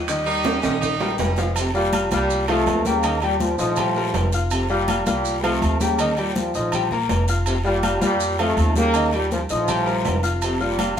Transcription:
Already playing: D#2 G3 D#4 G4
0.07 D#3 D#4 D#5, high conga, high timbale, long guiro, maracas
0.26 G3 D#4 G4 A#4, high conga, maracas
0.44 high conga, high timbale, short guiro, maracas
0.62 A#1 D#3 C#4 D#4 D#5, high timbale, short guiro, maracas
0.81 D#4, high conga, low conga, high timbale, long guiro, maracas
1.01 G3 G4 A#4, high conga, low timbale, maracas
1.18 F1 C#4, high conga, low timbale, short guiro, maracas
1.36 F3 F4 F5, low timbale, short guiro, maracas
1.55 F2 C3, high conga, low agogo, long guiro, maracas
1.75 A#2 G3 F4 F5 F6, high conga, maracas
1.93 F4 F5 F6, high conga, low agogo, short guiro, maracas
2.11 C2 A#2 G3 F4 F5 F6, high conga, low agogo, short guiro, maracas
2.29 high conga, long guiro, maracas
2.48 C3 F3 A3 F4 F5, high conga, low agogo, maracas
2.66 D#2, high conga, low timbale, low agogo, short guiro, maracas
2.85 C#3 G3 A#3 G4 G5, high conga, short guiro, maracas
3.03 D#3 D#4 D#5, high conga, low agogo, long guiro, maracas
3.22 A#2 G3 G4 G5, high conga, low agogo, maracas
3.40 A#2 F3, high conga, short guiro, maracas
3.58 A#1 A2 F3 D#4 D#5 D#6, short guiro, maracas
3.76 G3 G4 G5, high conga, low conga, low agogo, long guiro, maracas
3.95 G3 A#4 A#5, high conga, maracas
4.14 F1, high conga, low timbale, low agogo, short guiro, maracas
4.32 F4 F5 F6, high conga, short guiro, maracas
4.50 F2 C3, high conga, low agogo, long guiro, maracas
4.69 A#2 G3 F4 F5 F6, high conga, maracas
4.88 F4 F5 F6, high conga, low agogo, short guiro, maracas
5.06 C2 A#2 G3 F4 F5 F6, high conga, low agogo, short guiro, maracas
5.25 high conga, long guiro, maracas
5.43 C3 F3 A3 F4 F5, high conga, low agogo, maracas
5.62 D#2, high conga, low agogo, short guiro, maracas
5.80 C#3 G3 A#3 G4 G5, high conga, short guiro, maracas
5.99 D#3 D#4 D#5, high conga, low agogo, long guiro, maracas
6.17 A#2 G3 G4 G5, high conga, low agogo, maracas
6.35 A#2 F3, high conga, short guiro, maracas
6.54 A#1 A2 F3 D#4 D#5 D#6, short guiro, maracas
6.72 G3 G4 G5, high conga, low conga, low agogo, long guiro, maracas
6.91 A#3 A#4 A#5, high conga, low conga, maracas
7.09 F1, high conga, low timbale, low agogo, short guiro, maracas
7.28 F4 F5 F6, high conga, short guiro, maracas
7.46 F2 C3, high conga, low agogo, long guiro, maracas
7.65 A#2 G3 F4 F5 F6, high conga, maracas
7.83 F4 F5 F6, high conga, low agogo, short guiro, maracas
8.01 F2 A#2 G3 F4 F5 F6, high conga, low agogo, short guiro, maracas
8.19 high conga, long guiro, maracas
8.39 C3 F3 A3 F4 F5, high conga, low agogo, maracas
8.57 D#2, high conga, low agogo, short guiro, maracas
8.76 C#3 G3 A#3 G4 G5, high conga, short guiro, maracas
8.94 D#3 D#4 D#5, high conga, low agogo, long guiro, maracas
9.13 A#2 G3 G4 G5, high conga, low agogo, maracas
9.31 A#2 F3, high conga, short guiro, maracas
9.49 A#1 A2 F3 D#4 D#5 D#6, short guiro, maracas
9.68 G3 G4 G5, high conga, low conga, low agogo, long guiro, maracas
9.86 G3 A#4 A#5, high conga, maracas
10.05 F1, high conga, low timbale, low agogo, short guiro, maracas
10.23 F4 F5 F6, high conga, short guiro, maracas
10.42 F2 C3, high conga, low agogo, long guiro, maracas
10.60 A#2 G3 F4 F5 F6, high conga, maracas
10.79 F4 F5 F6, high conga, low agogo, short guiro, maracas

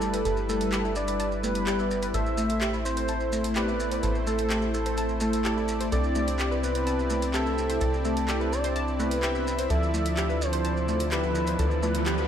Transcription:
Already playing: G1 G3 D4 E4 A4 B4 D5
0.01 maracas
0.14 B4, closed hi-hat, maracas
0.25 G1 G3 E4 A4 B4, closed hi-hat, maracas
0.37 maracas
0.49 A3 A4, maracas
0.61 closed hi-hat, maracas
0.72 G4, clap, closed hi-hat, maracas
0.85 E4, maracas
0.96 D5, maracas
1.07 B4, closed hi-hat, maracas
1.20 A5, closed hi-hat, maracas
1.32 maracas
1.44 A3 B4, maracas
1.55 closed hi-hat, maracas
1.67 G3 E4 G4 D5, clap, closed hi-hat, maracas
1.79 E4, maracas
1.91 maracas
2.02 B4, closed hi-hat, maracas
2.14 A1 A3 C4 E4 A4 C5 E5, closed hi-hat, maracas
2.26 maracas
2.38 A3, maracas
2.50 closed hi-hat, maracas
2.61 G4, clap, closed hi-hat, maracas
2.73 E4, maracas
2.85 C5, maracas
2.97 C5, closed hi-hat, maracas
3.08 A5, closed hi-hat, maracas
3.20 maracas
3.32 A3, maracas
3.44 closed hi-hat, maracas
3.56 A3 E4 G4 B4 D5, clap, closed hi-hat, maracas
3.68 E4, maracas
3.80 maracas
3.92 C5, closed hi-hat, maracas
4.03 A1 A3 E4 A4 C5, closed hi-hat, maracas
4.15 maracas
4.27 A3 A4, maracas
4.38 closed hi-hat, maracas
4.50 G4, clap, closed hi-hat, maracas
4.62 E4, maracas
4.74 A4, maracas
4.86 C5, closed hi-hat, maracas
4.97 A5, closed hi-hat, maracas
5.09 maracas
5.20 A3 A4, maracas
5.33 closed hi-hat, maracas
5.45 A3 E4 G4 D5, clap, closed hi-hat, maracas
5.57 E4, maracas
5.68 maracas
5.81 C5, closed hi-hat, maracas
5.92 C2 C3 C4 D4 E4 G4 A4 D5, closed hi-hat, maracas
6.04 maracas
6.15 A3, maracas
6.28 closed hi-hat, maracas
6.39 G4, clap, closed hi-hat, maracas
6.51 B4, maracas
6.63 B4, maracas
6.75 C5, closed hi-hat, maracas
6.87 A5, closed hi-hat, maracas
6.99 maracas
7.10 A3, maracas
7.22 closed hi-hat, maracas
7.34 C4 E4 G4 A4 E5, clap, closed hi-hat, maracas
7.46 E4, maracas
7.58 maracas
7.70 C5, closed hi-hat, maracas
7.81 C2 C4 E4 A4 D5, closed hi-hat, maracas
7.94 maracas
8.05 A3 A4, maracas
8.17 closed hi-hat, maracas
8.28 G4, clap, closed hi-hat, maracas
8.40 B4, maracas
8.52 D5, maracas
8.64 C5, closed hi-hat, maracas
8.76 A5, closed hi-hat, maracas
8.88 maracas
8.99 A3 B4, maracas
9.11 closed hi-hat, maracas
9.23 C4 E4 G4 E5, clap, closed hi-hat, maracas
9.35 E4, maracas
9.47 maracas
9.59 C5, closed hi-hat, maracas
9.70 D2 D3 F3 E4 A4 D5 E5, closed hi-hat, riser, maracas
9.83 maracas
9.94 A3, maracas
10.06 closed hi-hat, maracas
10.17 G4, clap, closed hi-hat, maracas
10.29 B4, maracas
10.41 C5, maracas
10.53 C5, closed hi-hat, maracas
10.64 A5, closed hi-hat, maracas
10.77 maracas
10.88 A3, maracas
11.00 closed hi-hat, maracas
11.11 F3 E4 G4 B4 E5, clap, closed hi-hat, maracas
11.23 E4, maracas
11.35 maracas
11.47 C5, closed hi-hat, maracas
11.59 D2 F3 E4 A4 D5, closed hi-hat, maracas
11.71 maracas
11.83 A3 B4, maracas
11.95 closed hi-hat, maracas
12.06 G4, clap, closed hi-hat, maracas
12.18 B4, maracas

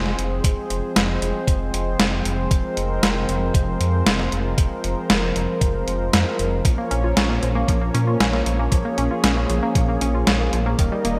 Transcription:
Already playing: F1 F3 G#3 C4 G#4 C5
0.06 snare
0.18 F1, closed hi-hat
0.44 F1, kick, closed hi-hat
0.70 F1, closed hi-hat
0.96 F1, snare, closed hi-hat
1.22 F1, closed hi-hat
1.48 F1, kick, closed hi-hat
1.74 F1, closed hi-hat
1.99 F1, snare, closed hi-hat
2.25 F1, closed hi-hat
2.51 F1 A#4, kick, closed hi-hat
2.77 F1, closed hi-hat
3.03 F1, snare, closed hi-hat
3.29 F1, closed hi-hat
3.54 F1, kick, closed hi-hat
3.80 F2, closed hi-hat
4.06 F1, snare, closed hi-hat
4.19 snare
4.32 F1, closed hi-hat
4.58 F1, kick, closed hi-hat
4.84 F1, closed hi-hat
5.10 F1, snare, closed hi-hat
5.36 F1, closed hi-hat
5.61 F1, kick, closed hi-hat
5.88 F1, closed hi-hat
6.13 F2, snare, closed hi-hat
6.39 F1, closed hi-hat
6.65 A#1 F3 A#3 C#4, kick, closed hi-hat
6.78 A#3
6.91 A#1 C#4, closed hi-hat
7.04 F4
7.17 A#1 C#4, snare, closed hi-hat
7.30 A#3
7.43 A#1 F3, closed hi-hat
7.55 A#3
7.68 A#1 F3, kick, closed hi-hat
7.81 A#3
7.94 A#2 C#4, closed hi-hat
8.07 F4
8.20 A#1 C#4, snare, closed hi-hat
8.33 A#3, snare
8.46 A#1 F3, closed hi-hat
8.59 A#3
8.72 A#1 F3 G#4, kick, closed hi-hat
8.85 A#3
8.98 A#1 C#4, closed hi-hat
9.11 F4
9.24 A#1 C#4, snare, closed hi-hat
9.37 A#3
9.50 A#1 F3, closed hi-hat
9.63 A#3
9.75 A#1 F3, kick, closed hi-hat
9.89 A#3
10.01 A#1 C#4, closed hi-hat
10.15 F4
10.27 A#1 C#4, snare, closed hi-hat
10.40 A#3
10.53 A#1 F3, closed hi-hat
10.66 A#3
10.79 D#1 D#3 G3 D#4 A#4 D#5, kick, closed hi-hat
10.92 G3
11.05 D#1 A#3, closed hi-hat

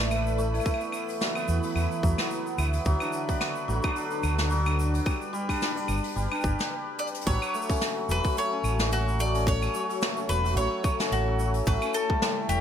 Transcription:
Already playing: A1 A3 D4 A4 B4 D5 E5 B5
0.00 E4
0.10 A4, open hi-hat, claves, shaker
0.27 shaker
0.38 A3, shaker
0.54 E4, open hi-hat, claves
0.60 claves, shaker
0.66 E3, kick, open hi-hat, claves, shaker
0.74 claves
0.81 B3, shaker
0.92 E4, claves, shaker
1.09 E4 F#5, open hi-hat, shaker
1.21 F#3, snare, open hi-hat, shaker
1.35 B3, claves, shaker
1.48 E2, shaker
1.63 B3, open hi-hat, shaker
1.70 open hi-hat
1.75 E2 E4, open hi-hat, claves, shaker
1.84 open hi-hat
1.91 shaker
2.03 E2 F#3, kick, shaker
2.18 B3, snare, open hi-hat, claves, shaker
2.31 open hi-hat, shaker
2.46 B3, shaker
2.58 D2 E4, claves, shaker
2.73 open hi-hat, shaker
2.85 D2 D3 F#3, kick, open hi-hat, shaker
3.00 D4, claves, shaker
3.13 A4, shaker
3.24 D4
3.29 D4, kick, open hi-hat, shaker
3.41 F#4, snare, open hi-hat, claves, shaker
3.55 shaker
3.68 A1 F#3, shaker
3.83 D4, kick, claves, shaker
3.96 open hi-hat, shaker
4.11 D4, shaker
4.23 D2 F#4, claves, shaker
4.38 snare, open hi-hat, shaker
4.50 F#3, open hi-hat, shaker
4.66 D4, claves, shaker
4.79 shaker
4.94 D4, open hi-hat, shaker
5.05 G3 G4, kick, open hi-hat, claves, shaker
5.21 shaker
5.33 G3, shaker
5.49 D4, kick, open hi-hat, claves, shaker
5.61 snare, open hi-hat, shaker
5.70 B4
5.77 D4, shaker
5.88 G1 G4, claves, shaker
5.97 shaker
6.04 G5, open hi-hat
6.16 G1 G3, open hi-hat, shaker
6.31 D4, claves, shaker
6.35 shaker
6.40 G1 G4, kick, shaker
6.44 shaker
6.59 D5, snare, open hi-hat, shaker
6.98 D5, closed hi-hat
7.07 closed hi-hat
7.14 closed hi-hat
7.21 closed hi-hat
7.26 A1 F#3 C#5, kick, open hi-hat, shaker
7.40 F#4, claves, shaker
7.54 A3, shaker
7.62 shaker
7.69 C#4, kick, open hi-hat, shaker
7.75 C#5, shaker
7.81 snare, open hi-hat, shaker
7.97 F#3
8.09 E1 F#3 B4, shaker
8.24 kick, open hi-hat, shaker
8.37 A3 C#5, open hi-hat, shaker
8.52 C#4
8.64 A1, claves, shaker
8.79 F#3, snare, open hi-hat, shaker
8.92 F#3 F#4, open hi-hat, shaker
9.08 shaker
9.19 A3 D5, shaker
9.35 C#4, open hi-hat, shaker
9.47 C#5, kick, open hi-hat, shaker
9.62 F#3, claves, shaker
9.74 F#3, shaker
9.90 open hi-hat, shaker
10.01 A3, snare, shaker
10.17 C#4, shaker
10.29 E1 B4, shaker
10.44 F#3, open hi-hat, shaker
10.56 A1 F#3 C#5, open hi-hat, shaker
10.84 A3, kick, claves, shaker
10.99 C#4, snare, open hi-hat, shaker
11.11 A1 F#4, open hi-hat, shaker
11.28 F#3
11.39 F#3, shaker
11.54 open hi-hat, shaker
11.66 A1 A3 B4, kick, open hi-hat, shaker
11.73 E4
11.82 C#4, claves, shaker
11.94 A4, shaker
12.10 G3, kick
12.22 G3, snare, open hi-hat, shaker
12.49 E1 A3 G4, shaker

